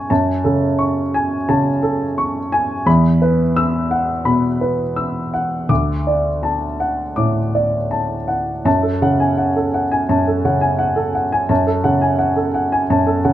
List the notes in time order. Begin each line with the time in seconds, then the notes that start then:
Already playing: C#3 A4 G#5 A5 C#6
0.10 F#2 A5
0.44 C#3 A4
0.79 C#6
1.14 G#5
1.49 C#3 A5
1.83 A4
2.18 C#6
2.52 G#5
2.86 E2 B5
3.22 B4
3.56 E6
3.91 F#5
4.25 B2 B5
4.61 B4
4.96 E6
5.34 F#5
5.69 D2 D6
6.07 D5
6.43 A5
6.80 F#5
7.16 A2 D6
7.55 D5
7.91 A5
8.28 F#5
8.65 F#2 A5
8.83 A4
9.02 C#3 F#5
9.20 G#5
9.38 F#5
9.56 A4
9.74 F#5
9.92 G#5
10.09 F#2 A5
10.28 A4
10.45 C#3 F#5
10.61 G#5
10.79 F#5
10.96 A4
11.15 F#5
11.32 G#5
11.49 F#2 A5
11.67 A4
11.84 C#3 F#5
12.02 G#5
12.19 F#5
12.36 A4
12.54 F#5
12.72 G#5
12.90 F#2 A5
13.07 A4
13.25 C#3 F#5